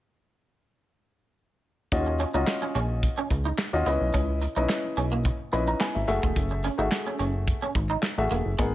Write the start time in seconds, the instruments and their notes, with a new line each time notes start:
1.92 analog synth bass D#2, grand piano C#4 F4 F#4 D#5, kick, closed hi-hat
2.07 muted clean electric guitar stroke
2.20 clean electric guitar C#4, closed hi-hat
2.34 analog synth bass C#2, grand piano C#4 F4 F#4 D#5, clean electric guitar D#4
2.47 muted clean electric guitar stroke, snare, clap, closed hi-hat
2.62 clean electric guitar C#4
2.75 analog synth bass A#1, clean electric guitar C#4, closed hi-hat
3.03 kick, closed hi-hat
3.18 clean electric guitar C#4
3.30 analog synth bass C#2, muted clean electric guitar stroke, kick, closed hi-hat
3.45 clean electric guitar D#4
3.58 snare, clap, closed hi-hat
3.73 analog synth bass D#2, grand piano C#4 F4 F#4 D#5
3.86 analog synth bass C#2, clean electric guitar B3, grand piano C#4 E4 B4 D#5, closed hi-hat
4.01 analog synth bass B1
4.14 analog synth bass C#2, clean electric guitar C#4, kick, closed hi-hat
4.42 muted clean electric guitar stroke, closed hi-hat
4.56 analog synth bass B1, grand piano C#4 E4 B4 D#5, clean electric guitar D#4
4.69 muted clean electric guitar stroke, snare, clap, closed hi-hat
4.97 analog synth bass B1, clean electric guitar C#4, closed hi-hat
5.12 clean electric guitar A#3
5.25 muted clean electric guitar stroke, kick, closed hi-hat
5.52 analog synth bass A#1, clean electric guitar B3, grand piano C#4 E4 B4 D#5 B5, closed hi-hat
5.68 clean electric guitar D#4, grand piano A#5
5.80 clean electric guitar B3, grand piano G#5, snare, clap, closed hi-hat
5.95 analog synth bass G#1, grand piano E5, muted clean electric guitar stroke
6.07 analog synth bass F#1, grand piano A3 F#4 G#4 E5, closed hi-hat
6.23 analog synth bass E1, clean electric guitar A3, kick
6.36 analog synth bass F#1, kick, closed hi-hat
6.51 muted clean electric guitar stroke
6.64 clean electric guitar C#4, closed hi-hat
6.78 analog synth bass G#1, grand piano A3 F#4 G#4 E5, clean electric guitar D#4
6.92 muted clean electric guitar stroke, snare, clap, closed hi-hat
7.07 clean electric guitar C#4
7.19 analog synth bass F#1, clean electric guitar C#4, closed hi-hat
7.47 kick, closed hi-hat
7.62 clean electric guitar C#4
7.75 analog synth bass G#1, muted clean electric guitar stroke, kick, closed hi-hat
7.90 clean electric guitar D#4
8.03 snare, clap, closed hi-hat
8.18 analog synth bass A1, grand piano A3 F#4 G#4 E5
8.31 analog synth bass E1, clean electric guitar A#3, closed hi-hat
8.46 analog synth bass F#1
8.58 analog synth bass G#1, clean electric guitar G#3, grand piano B3 G#4 A#4 F#5, kick, closed hi-hat